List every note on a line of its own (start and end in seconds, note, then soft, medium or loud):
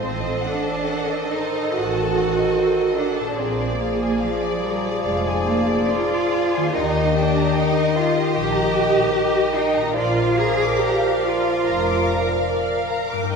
0.00 0.74 A1 soft
0.00 3.33 A2 soft
0.00 0.57 F3 soft
0.00 3.35 C4 soft
0.00 0.44 C4 medium
0.00 3.37 D#4 soft
0.00 3.39 A4 soft
0.00 3.34 A4 soft
0.00 0.21 C5 soft
0.00 0.51 C5 soft
0.00 3.40 C5 soft
0.04 3.35 D#5 soft
0.21 0.44 D#5 soft
0.41 1.32 D4 medium
0.41 0.65 F#5 soft
0.64 0.87 A5 soft
0.85 3.34 D#3 soft
0.85 1.09 F#5 soft
1.08 1.32 D#5 soft
1.31 1.75 D#4 medium
1.31 1.54 C5 soft
1.54 1.75 D#5 soft
1.74 2.45 A1 medium
1.74 2.98 F#4 medium
1.74 1.95 F#5 soft
1.95 2.17 A5 soft
2.17 2.38 F#5 soft
2.38 2.58 D#5 soft
2.59 2.79 C5 soft
2.79 2.98 D#5 soft
2.97 3.38 D4 medium
2.97 3.18 F#5 soft
3.19 6.69 A#2 soft
3.19 3.39 A5 soft
3.25 6.60 A#3 soft
3.29 6.73 D4 soft
3.34 3.78 C4 medium
3.34 6.76 G#4 soft
3.34 6.70 G#4 soft
3.38 4.06 A#1 medium
3.38 6.71 F3 medium
3.38 3.58 A#4 soft
3.38 6.70 D5 soft
3.38 6.75 D5 soft
3.60 3.80 D5 soft
3.79 4.19 A#3 medium
3.79 4.00 F5 soft
4.03 4.22 G#5 soft
4.19 4.61 F3 medium
4.19 4.41 F5 soft
4.42 4.62 D5 soft
4.61 5.02 G3 medium
4.61 4.83 A#4 soft
4.85 5.04 D5 soft
5.01 5.77 F1 medium
5.01 5.46 G#3 medium
5.01 5.22 F5 soft
5.26 5.48 G#5 soft
5.45 5.90 A#3 medium
5.45 5.70 F5 soft
5.69 5.91 D5 soft
5.91 6.74 F4 medium
5.91 6.13 A#4 soft
6.10 6.32 D5 soft
6.31 6.53 F5 soft
6.54 9.89 D#3 soft
6.54 6.75 G#5 soft
6.61 9.80 A#3 soft
6.65 9.94 D#4 soft
6.70 7.38 D#3 medium
6.70 9.96 G4 soft
6.74 7.42 D#2 medium
6.74 7.15 D#4 medium
6.74 9.92 G4 medium
6.74 6.95 A#4 soft
6.74 9.91 D#5 medium
6.74 7.52 D#5 medium
6.96 7.16 D#5 soft
7.15 7.55 D4 medium
7.15 7.35 G5 soft
7.36 7.56 A#5 soft
7.55 8.33 D#3 medium
7.55 7.96 D#4 medium
7.55 8.18 D#5 medium
7.55 7.76 G5 soft
7.75 7.95 D#5 soft
7.95 8.35 F4 medium
7.95 8.15 A#4 soft
8.15 8.35 D#5 soft
8.33 9.00 A#1 medium
8.33 9.96 D#3 medium
8.33 9.52 G4 medium
8.33 9.96 D#5 medium
8.33 8.52 G5 soft
8.54 8.74 A#5 soft
8.75 8.94 G5 soft
8.92 9.13 D#5 soft
9.11 9.32 A#4 soft
9.34 9.54 D#5 soft
9.54 9.95 D#4 medium
9.54 9.75 G5 soft
9.76 13.26 A#2 soft
9.76 9.96 A#5 soft
9.81 13.16 A#3 soft
9.86 13.31 D4 soft
9.90 13.25 A#4 soft
9.94 10.64 A#1 medium
9.94 13.04 F3 medium
9.94 10.35 F4 medium
9.94 13.36 A#4 medium
9.94 13.04 D5 medium
9.94 10.15 D5 medium
9.94 13.28 F5 medium
10.17 10.37 F5 soft
10.36 10.78 G#4 medium
10.36 10.59 A#5 soft
10.61 10.80 D6 soft
10.79 11.22 G4 medium
10.79 11.01 A#5 soft
10.99 11.21 F5 soft
11.22 12.07 F4 medium
11.22 11.44 D5 soft
11.44 11.65 F5 soft
11.66 12.35 F1 medium
11.66 11.86 A#5 soft
11.87 12.07 D6 soft
12.10 12.29 A#5 soft
12.30 12.49 F5 soft
12.48 12.69 D5 soft
12.70 12.90 F5 soft
12.89 13.10 A#5 soft
13.10 13.36 G2 soft
13.10 13.32 D6 soft
13.17 13.36 A#3 soft
13.22 13.36 D#4 soft
13.26 13.36 A#4 soft
13.30 13.36 D#3 soft
13.30 13.36 A#3 medium
13.30 13.36 D#5 soft
13.30 13.36 G5 medium